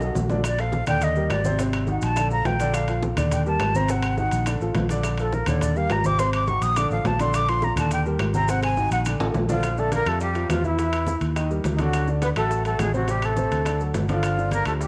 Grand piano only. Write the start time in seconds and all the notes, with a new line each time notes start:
0.01 F#3 F#4 A4
0.30 D3 D4 D5
0.59 F3 F4 A4
0.88 D3 D4 D5
1.16 G3 G4 A#4
1.45 C3 C4 C5
1.59 C3 C4 C5
1.88 D#3 D#4 F#4
2.17 D3 D4 D5
2.31 F3 F4 A4
2.60 D3 D4 D5
2.89 F3 F4 A4
3.17 D3 D4 D5
3.46 G3 G4 A#4
3.75 C3 C4 C5
3.90 C3 C4 C5
4.19 D#3 D#4 F#4
4.47 D3 D4 D5
4.61 F3 F4 A4
4.90 D3 D4 D5
5.19 F3 F4 A4
5.48 D3 D4 D5
5.76 G3 G4 A#4
6.06 C3 C4 C5
6.20 C3 C4 C5
6.48 D#3 D#4 F#4
6.77 D3 D4 D5
6.92 F3 F4 A4
7.20 D3 D4 D5
7.49 F3 F4 A4
7.78 D3 D4 D5
8.06 G3 G4 A#4
8.35 C3 C4 C5
8.49 C3 C4 C5
8.78 D#3 D#4 F#4
9.06 D3 D4 D5
9.21 F3 F4 A4
9.49 D3 D4 D5
9.78 D3 D4 D5
10.07 F3 F4 G4
10.35 F3 F4 G4
10.64 E3 E4 E5
10.79 E3 E4 E5
11.07 E3 E4 E5
11.36 D#3 D#4 D#5
11.50 G3 G4 A#4
11.79 D3 D4 D5
12.08 D3 D4 D5
12.37 F#3 F#4 A4
12.65 F#3 F#4 A4
12.94 C3 C4 C5
13.09 C3 C4 C5
13.38 C3 C4 C5
13.66 D3 D4 D5
13.80 F#3 F#4 A4
14.09 D3 D4 D5
14.38 D3 D4 D5
14.67 F3 F4 G4